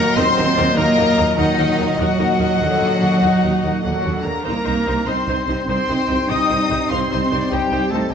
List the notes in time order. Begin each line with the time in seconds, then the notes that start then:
Already playing: A#2 F#3 A#3 A#4 D#5 F#5 A#5
0.15 D#2 C4 D#4 A#4 C5 D#5 C6
0.35 D#2 D#4 A#4 C5
0.56 D#2 D#4 A#4 D5
0.76 D#2 A#3 D#4 A#4 D#5 A#5
0.97 D#2 D#4 A#4
1.17 D#2 D#4 A#4
1.36 D#2 D#3 D#4 A#4 D#5 F#5
1.57 D#2 D#4 A#4
1.77 D#2 D#4 A#4
1.97 D#2 F#3 D#4 F#4 A#4 D#5 F#5
2.19 D#2 D#4 A#4
2.39 D#2 D#4 A#4
2.59 D#2 D3
2.81 D#2
3.02 D#2
3.20 D#2 D#4
3.44 D#2
3.63 D#2
3.82 D#2 D3 F#3 F#4 F#5
4.05 D#2
4.24 D#2 A#3 A#4 A#5
4.43 C2 G2 G3 A#3 C4 D#4 A#4 C5 A#5
4.64 C2 D#4 C5
4.86 C2 D#4 C5
5.07 C2 C4 D#4 C5 C6
5.28 C2 D#4 C5
5.48 C2 D#4 C5
5.67 C2 C4 D#4 C5 G5 C6
5.88 C2 D#4 C5
6.07 C2 D#4 C5
6.29 C2 D#4 C5 D#5 D#6
6.49 C2 D#4 C5
6.69 C2 D#4 C5
6.90 C2 C4 D#4 C5 F5 C6
7.11 C2 D#4 C5 D#5
7.31 C2 D#4 C5 D5
7.51 C2 G3 D#4 G4 C5 G5
7.72 C2 D#4 C5
7.90 C2 A3 D#4 A4 C5 A5
8.11 G3